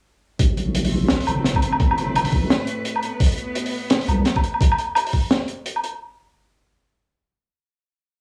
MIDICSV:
0, 0, Header, 1, 4, 480
1, 0, Start_track
1, 0, Key_signature, 0, "minor"
1, 0, Tempo, 350877
1, 542, Time_signature, 4, 2, 24, 8
1, 11223, End_track
2, 0, Start_track
2, 0, Title_t, "Cello section"
2, 0, Program_c, 0, 48
2, 542, Note_on_c, 0, 45, 79
2, 856, Note_on_c, 0, 57, 73
2, 1202, Note_on_c, 0, 60, 89
2, 1451, Note_on_c, 0, 71, 75
2, 4132, Note_on_c, 0, 59, 90
2, 4293, Note_off_c, 0, 60, 0
2, 6299, Note_off_c, 0, 57, 0
2, 6301, Note_off_c, 0, 59, 0
2, 6302, Note_off_c, 0, 45, 0
2, 6303, Note_off_c, 0, 71, 0
2, 11223, End_track
3, 0, Start_track
3, 0, Title_t, "Wobble bass"
3, 0, Program_c, 1, 39
3, 540, Note_on_c, 1, 33, 99
3, 1488, Note_off_c, 1, 33, 0
3, 1505, Note_on_c, 1, 33, 86
3, 1632, Note_off_c, 1, 33, 0
3, 1745, Note_on_c, 1, 31, 96
3, 3180, Note_on_c, 1, 33, 83
3, 3201, Note_off_c, 1, 31, 0
3, 3405, Note_off_c, 1, 33, 0
3, 5583, Note_on_c, 1, 36, 104
3, 5806, Note_off_c, 1, 36, 0
3, 11223, End_track
4, 0, Start_track
4, 0, Title_t, "Drums"
4, 539, Note_on_c, 9, 36, 121
4, 541, Note_on_c, 9, 42, 82
4, 676, Note_off_c, 9, 36, 0
4, 678, Note_off_c, 9, 42, 0
4, 782, Note_on_c, 9, 42, 49
4, 919, Note_off_c, 9, 42, 0
4, 1021, Note_on_c, 9, 42, 82
4, 1156, Note_on_c, 9, 46, 72
4, 1157, Note_off_c, 9, 42, 0
4, 1293, Note_off_c, 9, 46, 0
4, 1484, Note_on_c, 9, 38, 118
4, 1500, Note_on_c, 9, 42, 85
4, 1621, Note_off_c, 9, 38, 0
4, 1637, Note_off_c, 9, 42, 0
4, 1647, Note_on_c, 9, 46, 70
4, 1736, Note_on_c, 9, 77, 52
4, 1743, Note_on_c, 9, 42, 57
4, 1784, Note_off_c, 9, 46, 0
4, 1873, Note_off_c, 9, 77, 0
4, 1880, Note_off_c, 9, 42, 0
4, 1975, Note_on_c, 9, 38, 58
4, 1991, Note_on_c, 9, 42, 80
4, 2111, Note_off_c, 9, 38, 0
4, 2120, Note_on_c, 9, 36, 61
4, 2128, Note_off_c, 9, 42, 0
4, 2131, Note_on_c, 9, 77, 54
4, 2218, Note_on_c, 9, 42, 59
4, 2256, Note_off_c, 9, 36, 0
4, 2268, Note_off_c, 9, 77, 0
4, 2355, Note_off_c, 9, 42, 0
4, 2359, Note_on_c, 9, 77, 61
4, 2458, Note_on_c, 9, 42, 94
4, 2460, Note_on_c, 9, 36, 122
4, 2496, Note_off_c, 9, 77, 0
4, 2595, Note_off_c, 9, 42, 0
4, 2597, Note_off_c, 9, 36, 0
4, 2612, Note_on_c, 9, 77, 83
4, 2705, Note_on_c, 9, 42, 54
4, 2749, Note_off_c, 9, 77, 0
4, 2842, Note_off_c, 9, 42, 0
4, 2947, Note_on_c, 9, 42, 76
4, 2954, Note_on_c, 9, 77, 79
4, 3074, Note_on_c, 9, 46, 79
4, 3084, Note_off_c, 9, 42, 0
4, 3091, Note_off_c, 9, 77, 0
4, 3180, Note_on_c, 9, 36, 65
4, 3211, Note_off_c, 9, 46, 0
4, 3317, Note_off_c, 9, 36, 0
4, 3424, Note_on_c, 9, 38, 127
4, 3427, Note_on_c, 9, 42, 86
4, 3561, Note_off_c, 9, 38, 0
4, 3564, Note_off_c, 9, 42, 0
4, 3653, Note_on_c, 9, 42, 57
4, 3790, Note_off_c, 9, 42, 0
4, 3899, Note_on_c, 9, 42, 86
4, 4036, Note_off_c, 9, 42, 0
4, 4047, Note_on_c, 9, 77, 52
4, 4141, Note_on_c, 9, 42, 56
4, 4184, Note_off_c, 9, 77, 0
4, 4277, Note_off_c, 9, 42, 0
4, 4381, Note_on_c, 9, 36, 125
4, 4381, Note_on_c, 9, 42, 81
4, 4427, Note_off_c, 9, 42, 0
4, 4427, Note_on_c, 9, 42, 67
4, 4461, Note_off_c, 9, 42, 0
4, 4461, Note_on_c, 9, 42, 53
4, 4518, Note_off_c, 9, 36, 0
4, 4523, Note_off_c, 9, 42, 0
4, 4523, Note_on_c, 9, 42, 47
4, 4542, Note_off_c, 9, 42, 0
4, 4542, Note_on_c, 9, 42, 37
4, 4588, Note_off_c, 9, 42, 0
4, 4588, Note_on_c, 9, 42, 30
4, 4617, Note_off_c, 9, 42, 0
4, 4617, Note_on_c, 9, 42, 49
4, 4754, Note_off_c, 9, 42, 0
4, 4860, Note_on_c, 9, 42, 89
4, 4997, Note_off_c, 9, 42, 0
4, 5003, Note_on_c, 9, 46, 79
4, 5140, Note_off_c, 9, 46, 0
4, 5335, Note_on_c, 9, 42, 97
4, 5346, Note_on_c, 9, 38, 127
4, 5472, Note_off_c, 9, 42, 0
4, 5482, Note_off_c, 9, 38, 0
4, 5487, Note_on_c, 9, 46, 72
4, 5587, Note_on_c, 9, 42, 55
4, 5587, Note_on_c, 9, 77, 49
4, 5623, Note_off_c, 9, 46, 0
4, 5724, Note_off_c, 9, 42, 0
4, 5724, Note_off_c, 9, 77, 0
4, 5815, Note_on_c, 9, 42, 75
4, 5822, Note_on_c, 9, 38, 64
4, 5952, Note_off_c, 9, 42, 0
4, 5959, Note_off_c, 9, 38, 0
4, 5960, Note_on_c, 9, 36, 65
4, 5966, Note_on_c, 9, 77, 53
4, 6065, Note_on_c, 9, 42, 49
4, 6097, Note_off_c, 9, 36, 0
4, 6103, Note_off_c, 9, 77, 0
4, 6202, Note_off_c, 9, 42, 0
4, 6209, Note_on_c, 9, 77, 49
4, 6301, Note_on_c, 9, 36, 127
4, 6313, Note_on_c, 9, 42, 81
4, 6346, Note_off_c, 9, 77, 0
4, 6437, Note_off_c, 9, 36, 0
4, 6449, Note_off_c, 9, 42, 0
4, 6451, Note_on_c, 9, 77, 75
4, 6542, Note_on_c, 9, 42, 49
4, 6588, Note_off_c, 9, 77, 0
4, 6679, Note_off_c, 9, 42, 0
4, 6775, Note_on_c, 9, 77, 81
4, 6788, Note_on_c, 9, 42, 82
4, 6912, Note_off_c, 9, 77, 0
4, 6925, Note_off_c, 9, 42, 0
4, 6928, Note_on_c, 9, 46, 77
4, 7021, Note_on_c, 9, 36, 63
4, 7065, Note_off_c, 9, 46, 0
4, 7157, Note_off_c, 9, 36, 0
4, 7259, Note_on_c, 9, 38, 127
4, 7260, Note_on_c, 9, 42, 86
4, 7396, Note_off_c, 9, 38, 0
4, 7397, Note_off_c, 9, 42, 0
4, 7495, Note_on_c, 9, 42, 53
4, 7632, Note_off_c, 9, 42, 0
4, 7740, Note_on_c, 9, 42, 82
4, 7876, Note_off_c, 9, 42, 0
4, 7880, Note_on_c, 9, 77, 49
4, 7983, Note_on_c, 9, 42, 54
4, 8017, Note_off_c, 9, 77, 0
4, 8120, Note_off_c, 9, 42, 0
4, 11223, End_track
0, 0, End_of_file